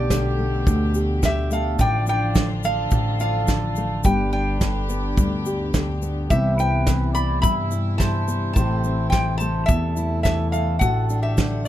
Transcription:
0.00 0.63 B1 medium
0.00 0.11 B2 medium
0.00 1.77 B2 medium
0.00 0.39 A3 medium
0.00 1.77 A3 medium
0.00 1.80 B3 medium
0.00 0.94 G4 medium
0.00 1.19 G4 medium
0.00 1.77 G4 medium
0.00 1.20 D5 loud
0.10 1.21 D3 medium
0.10 kick medium
0.10 snare loud
0.10 shaker loud
0.39 1.50 A3 medium
0.66 1.75 D2 loud
0.66 1.23 B2 medium
0.66 kick loud
0.66 shaker loud
0.94 1.76 G4 medium
0.94 shaker medium
1.22 2.34 D3 medium
1.22 1.50 G4 medium
1.22 1.52 E5 loud
1.22 kick medium
1.22 snare medium
1.22 shaker medium
1.51 1.76 A3 medium
1.51 1.78 A4 medium
1.51 1.80 F5 medium
1.51 shaker medium
1.78 2.88 A1 medium
1.78 2.35 A2 medium
1.78 4.02 F3 medium
1.78 4.02 D4 medium
1.78 4.02 F4 medium
1.78 3.19 F4 medium
1.78 2.06 D5 medium
1.78 2.08 G5 loud
1.78 kick loud
1.78 shaker loud
2.07 4.01 D4 medium
2.07 2.50 D5 medium
2.07 2.65 G5 loud
2.07 shaker medium
2.35 3.47 D3 medium
2.35 kick medium
2.35 snare loud
2.35 shaker medium
2.63 3.76 A3 medium
2.63 3.17 A4 medium
2.63 3.19 F5 loud
2.63 shaker medium
2.91 4.01 A1 medium
2.91 3.48 A2 medium
2.91 kick medium
2.91 shaker medium
3.20 4.02 F4 medium
3.20 4.01 A4 medium
3.20 4.05 F5 loud
3.20 shaker medium
3.48 4.60 D3 medium
3.48 kick medium
3.48 snare medium
3.48 shaker loud
3.76 4.02 A3 medium
3.76 shaker medium
4.04 5.14 G1 medium
4.04 5.17 G2 medium
4.04 6.28 D3 medium
4.04 6.28 G4 medium
4.04 5.45 G4 medium
4.04 4.31 B4 medium
4.04 4.31 G5 medium
4.04 kick loud
4.04 shaker loud
4.33 6.27 D4 medium
4.33 5.99 B4 medium
4.33 5.98 G5 loud
4.61 5.73 D3 medium
4.61 kick medium
4.61 snare loud
4.61 shaker medium
4.89 6.01 B3 medium
4.89 shaker medium
5.17 6.26 D2 loud
5.17 6.27 G2 medium
5.17 kick loud
5.17 shaker medium
5.46 6.27 G4 medium
5.46 shaker medium
5.74 6.30 D3 medium
5.74 kick medium
5.74 snare loud
5.74 shaker medium
6.02 6.27 B3 medium
6.02 shaker medium
6.29 7.39 C2 medium
6.29 10.77 C3 medium
6.29 6.87 C3 medium
6.29 6.86 E3 medium
6.29 7.14 B3 medium
6.29 6.59 C4 medium
6.29 10.77 E4 medium
6.29 6.56 G4 medium
6.29 6.59 E5 medium
6.29 kick medium
6.29 shaker medium
6.33 7.70 E4 medium
6.56 8.53 C4 medium
6.56 7.10 B4 medium
6.56 7.17 G5 loud
6.56 shaker medium
6.86 7.97 E3 medium
6.86 kick medium
6.86 snare loud
6.86 shaker medium
7.13 8.26 B3 medium
7.13 7.40 D5 medium
7.13 7.40 B5 loud
7.13 shaker medium
7.42 8.53 G2 medium
7.42 8.52 G2 loud
7.42 7.95 E5 medium
7.42 7.98 B5 loud
7.42 kick loud
7.42 shaker medium
7.71 8.56 E4 medium
7.71 shaker medium
7.98 8.52 E3 medium
7.98 8.51 C5 medium
7.98 8.52 A5 loud
7.98 kick medium
7.98 snare medium
7.98 shaker loud
8.28 8.52 B3 medium
8.28 shaker medium
8.53 9.65 A1 medium
8.53 9.68 A2 medium
8.53 9.12 E3 medium
8.53 11.68 A3 medium
8.53 9.41 A3 medium
8.53 8.83 C4 medium
8.53 9.08 C5 medium
8.53 9.09 A5 medium
8.53 kick medium
8.53 shaker medium
8.58 9.96 E4 medium
8.84 10.78 C4 medium
8.84 shaker medium
9.10 10.23 E3 medium
9.10 9.37 C5 medium
9.10 9.37 G5 loud
9.10 kick medium
9.10 snare medium
9.10 shaker medium
9.38 10.52 A3 medium
9.38 9.66 C5 medium
9.38 9.68 A5 medium
9.38 shaker medium
9.66 10.81 E2 medium
9.66 10.78 E2 loud
9.66 10.20 A4 medium
9.66 10.22 E5 loud
9.66 kick loud
9.66 shaker loud
9.96 10.81 E4 medium
9.96 shaker medium
10.22 10.78 E3 medium
10.22 10.50 A4 medium
10.22 10.50 E5 medium
10.22 kick medium
10.22 snare loud
10.22 shaker loud
10.51 10.78 A3 medium
10.51 10.78 A4 medium
10.51 10.79 F5 medium
10.51 shaker medium
10.79 11.68 A1 loud
10.79 11.38 A2 medium
10.79 11.68 D3 medium
10.79 11.68 F#4 medium
10.79 11.19 A4 medium
10.79 11.22 F#5 medium
10.79 11.68 F#5 medium
10.79 kick loud
10.79 shaker medium
11.10 11.68 D4 medium
11.10 shaker medium
11.22 11.62 G4 medium
11.22 11.63 E5 medium
11.37 11.68 D3 medium
11.37 kick medium
11.37 snare loud
11.37 shaker medium
11.64 11.68 F#4 medium

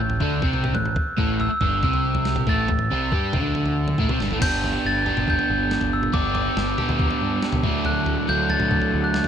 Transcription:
0.00 0.19 A1 medium
0.00 0.17 A2 medium
0.00 0.29 G6 medium
0.10 floor tom medium
0.20 0.41 D2 medium
0.20 0.41 D3 medium
0.20 0.42 D4 medium
0.20 kick medium
0.20 floor tom medium
0.42 0.73 C2 medium
0.42 0.74 C3 medium
0.42 0.75 C4 medium
0.42 kick loud
0.42 floor tom medium
0.53 mid tom medium
0.64 floor tom medium
0.64 mid tom medium
0.75 0.95 A1 medium
0.75 0.92 A2 medium
0.75 1.42 F#6 medium
0.75 floor tom medium
0.85 mid tom medium
0.96 kick loud
0.96 floor tom medium
1.17 1.48 A1 medium
1.17 1.49 A2 medium
1.17 1.50 A3 medium
1.17 kick loud
1.40 1.83 E6 medium
1.40 floor tom medium
1.50 muted overdriven electric guitar stroke medium
1.50 muted picked electric bass stroke soft
1.61 1.82 G1 medium
1.61 1.82 G2 medium
1.61 1.83 G3 medium
1.61 kick medium
1.61 floor tom medium
1.83 2.44 C2 medium
1.83 2.47 C3 medium
1.83 2.47 C4 medium
1.83 2.51 E6 medium
1.83 kick loud
1.83 floor tom medium
1.93 floor tom medium
2.15 floor tom medium
2.25 snare medium
2.36 floor tom medium
2.36 mid tom medium
2.47 2.68 A1 medium
2.47 2.68 A2 medium
2.47 2.69 A3 loud
2.47 3.96 A6 medium
2.47 kick medium
2.47 floor tom medium
2.68 2.89 A1 medium
2.68 2.87 A2 medium
2.68 kick medium
2.68 floor tom medium
2.79 floor tom medium
2.91 3.11 C2 medium
2.91 3.12 C3 medium
2.91 3.12 C4 loud
3.12 3.32 G2 medium
3.12 3.33 G3 medium
3.12 3.34 G4 loud
3.12 kick loud
3.33 3.95 D2 medium
3.33 3.98 D3 medium
3.33 3.99 D4 loud
3.33 kick loud
3.33 floor tom medium
3.33 mid tom medium
3.55 floor tom medium
3.66 floor tom medium
3.88 floor tom medium
3.98 4.09 A1 medium
3.98 4.09 A2 medium
3.98 4.09 A3 medium
3.98 kick medium
3.98 mid tom medium
4.09 4.20 C2 medium
4.09 4.19 C3 medium
4.09 4.20 C4 loud
4.09 floor tom medium
4.09 mid tom medium
4.20 4.30 G1 medium
4.20 4.30 G2 medium
4.20 4.31 G3 medium
4.20 snare medium
4.30 4.41 A1 medium
4.30 4.41 A2 medium
4.30 4.39 A3 loud
4.30 floor tom medium
4.40 4.77 G1 medium
4.40 5.09 B3 medium
4.40 5.07 D4 loud
4.40 5.05 G4 medium
4.40 4.86 G6 loud
4.40 kick loud
4.40 floor tom medium
4.40 crash loud
4.64 floor tom medium
4.85 5.11 G1 medium
4.85 5.26 A6 loud
5.06 6.11 B3 medium
5.06 6.14 D4 medium
5.06 6.12 G4 medium
5.06 floor tom medium
5.17 5.35 G1 medium
5.17 mid tom medium
5.28 5.95 G6 loud
5.28 kick loud
5.39 floor tom medium
5.50 5.76 G1 medium
5.71 snare medium
5.81 6.08 G1 medium
5.81 floor tom medium
5.93 6.13 E6 medium
6.03 mid tom medium
6.12 6.49 G1 loud
6.12 6.76 B3 medium
6.12 6.79 D4 loud
6.12 6.76 G4 medium
6.12 6.33 D6 medium
6.12 kick loud
6.12 floor tom medium
6.35 6.96 D6 medium
6.35 floor tom medium
6.57 6.74 G1 medium
6.57 snare medium
6.77 7.64 B3 medium
6.77 7.64 D4 medium
6.77 7.63 G4 medium
6.77 floor tom medium
6.77 mid tom medium
6.89 7.07 D2 medium
6.89 mid tom medium
6.99 kick loud
7.11 floor tom medium
7.21 7.39 G2 medium
7.43 snare medium
7.53 7.62 C#2 medium
7.53 floor tom medium
7.53 mid tom medium
7.64 8.16 D2 loud
7.64 8.27 F#3 medium
7.64 8.28 A3 loud
7.64 8.29 D4 loud
7.64 kick loud
7.85 9.28 E4 medium
7.85 9.28 A4 medium
7.85 9.28 D5 medium
7.85 9.28 F#5 medium
7.85 8.30 F#6 medium
7.85 floor tom medium
8.06 floor tom medium
8.28 8.55 D2 medium
8.28 9.28 F#3 medium
8.28 9.28 A3 medium
8.28 9.28 D4 medium
8.28 8.49 G6 loud
8.50 9.05 A6 loud
8.50 floor tom medium
8.60 8.79 D2 medium
8.60 mid tom medium
8.71 kick loud
8.82 floor tom medium
8.94 9.20 D2 medium
9.04 9.28 F#6 medium
9.14 snare medium
9.24 floor tom medium

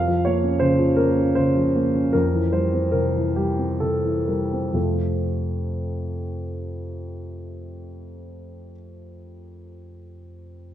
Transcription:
0.00 2.10 F2 soft
0.00 0.24 F5 medium
0.08 0.36 F3 soft
0.25 0.54 A#3 soft
0.25 0.61 C#5 medium
0.44 0.72 C#4 soft
0.60 0.90 C#3 soft
0.60 0.97 C5 medium
0.78 1.09 F3 soft
0.96 1.28 A#3 soft
0.96 1.36 A#4 medium
1.17 1.48 C#4 soft
1.35 1.67 C#3 soft
1.35 2.13 C5 medium
1.56 1.87 F3 soft
1.75 2.06 A#3 soft
1.95 2.14 C#4 soft
2.13 4.72 F2 soft
2.13 2.53 A#4 medium
2.34 2.66 E3 soft
2.53 2.86 G3 soft
2.53 2.94 C5 medium
2.73 3.07 C4 soft
2.92 3.28 C3 soft
2.92 3.36 A#4 medium
3.16 3.50 E3 soft
3.36 3.72 G3 soft
3.36 3.81 G4 soft
3.59 3.96 C4 soft
3.80 4.19 C3 soft
3.80 4.29 A4 soft
4.04 4.44 E3 soft
4.28 4.66 G3 soft
4.28 4.75 A#4 soft
4.53 4.73 C4 soft
4.73 8.72 F2 soft
4.73 8.72 C3 soft
4.73 8.72 A3 soft
4.73 8.73 C4 soft
4.73 8.72 F4 soft

